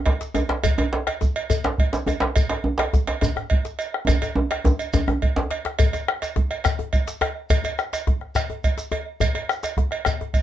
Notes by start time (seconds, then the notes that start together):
0.06 bombo low, cowbell, djembe slap
0.21 djembe slap, shekere
0.34 cowbell, djembe tone, shekere
0.49 bombo rim, djembe slap
0.64 bombo low, cowbell, djembe bass, shekere
0.78 cowbell, djembe tone
0.93 djembe slap
1.07 bombo rim, cowbell, djembe slap
1.21 bombo low, djembe tone, shekere
1.36 cowbell
1.50 cowbell, djembe bass, shekere
1.64 bombo rim, djembe slap
1.78 bombo low, cowbell, djembe slap
1.93 djembe slap, shekere
2.06 cowbell, djembe tone, shekere
2.20 bombo rim, djembe slap
2.36 bombo low, cowbell, djembe bass, shekere
2.49 cowbell, djembe slap, djembe tone
2.64 djembe slap, djembe tone
2.78 bombo rim, cowbell, djembe slap
2.93 bombo low, djembe tone, shekere
3.07 cowbell, djembe slap
3.21 cowbell, djembe tone, djembe bass, shekere
3.36 bombo rim, djembe tone
3.50 bombo low, cowbell, djembe slap
3.65 djembe slap, shekere
3.79 cowbell, shekere
3.94 bombo rim
4.07 bombo rim, bombo low, cowbell, djembe slap, djembe tone, djembe bass, shekere
4.22 bombo rim, cowbell, djembe tone, shekere
4.36 djembe tone
4.51 bombo rim, cowbell, djembe slap
4.65 bombo rim, bombo low, djembe slap, djembe tone, shekere
4.79 cowbell, shekere
4.93 cowbell, djembe slap, djembe tone, djembe bass, shekere
5.08 bombo rim, djembe tone
5.22 bombo low, cowbell, djembe bass
5.36 bombo rim, djembe slap, djembe bass
5.50 cowbell, djembe slap
5.65 bombo rim, djembe slap
5.79 bombo low, cowbell, djembe bass, shekere
5.93 cowbell, djembe tone, shekere
6.08 bombo rim
6.22 bombo rim, cowbell, djembe slap, shekere
6.36 bombo low, djembe slap, djembe tone
6.50 bombo rim, cowbell, djembe slap
6.64 bombo rim, cowbell, djembe slap, djembe bass, shekere
6.79 djembe tone
6.93 bombo low, cowbell, shekere
7.07 djembe slap, shekere
7.21 bombo rim, cowbell, djembe tone
7.50 bombo low, cowbell, djembe bass, shekere
7.64 cowbell, djembe tone, shekere
7.78 bombo rim, shekere
7.93 bombo rim, cowbell, djembe slap, shekere
8.07 bombo low, djembe slap, djembe tone
8.21 bombo rim, djembe slap
8.35 bombo rim, cowbell, djembe slap, djembe bass, shekere
8.50 djembe tone
8.64 bombo low, cowbell, shekere
8.78 djembe slap, shekere
8.92 cowbell, djembe tone
9.20 bombo low, cowbell, djembe bass, shekere
9.35 cowbell, djembe tone
9.49 bombo rim, shekere
9.63 bombo rim, cowbell, djembe slap, shekere
9.77 bombo low, djembe slap, djembe tone
9.91 bombo rim, cowbell, djembe slap
10.05 bombo rim, cowbell, djembe slap, djembe bass, shekere
10.21 djembe tone
10.34 bombo low, cowbell, shekere